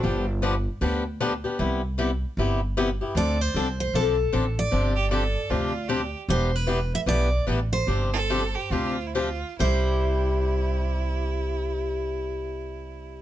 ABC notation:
X:1
M:4/4
L:1/16
Q:"Swing" 1/4=154
K:C
V:1 name="Steel-string acoustic guitar"
z16 | z16 | d2 c4 c2 A6 d2- | d12- d2 z2 |
c2 B4 e2 d4 z2 c2- | c12- c2 z2 | c16- | c16 |]
V:2 name="Violin"
D2 z12 z2 | z16 | z16 | z2 G2 A4 F4 G3 z |
z16 | z2 A4 G2 F3 E F4 | E16- | E16 |]
V:3 name="Steel-string acoustic guitar"
[D,F,B,DG]2 z2 [D,F,B,DG] z3 [D,F,B,DG]2 z2 [D,F,B,DG] z [B,DG]2 | [C,G,B,EG]2 z2 [C,G,B,EG] z3 [C,G,B,EG]2 z2 [C,G,B,EG] z [B,EG]2 | [D,F,CDA]2 z2 [D,F,CDA] z3 [D,F,CDA]2 z2 [D,F,CDA] z3 | [C,F,CDG]2 z2 [C,F,CDG] z3 [C,F,CDG]2 z2 [C,F,CDG] z3 |
[E,B,DG]2 z2 [E,B,DG] z3 [E,B,DG]2 z2 [E,B,DG] z3 | [C,F,CDG]2 z2 [C,F,CDG] z3 [C,F,CDG]2 z2 [C,F,CDG] z3 | [C,G,EG]16- | [C,G,EG]16 |]
V:4 name="Upright bass" clef=bass
G,,,8 D,,8 | C,,8 G,,,8 | D,,4 C,,4 B,,,4 A,,,4 | G,,,8 D,,8 |
E,,,8 B,,,4 A,,,4 | G,,,8 D,,8 | C,,16- | C,,16 |]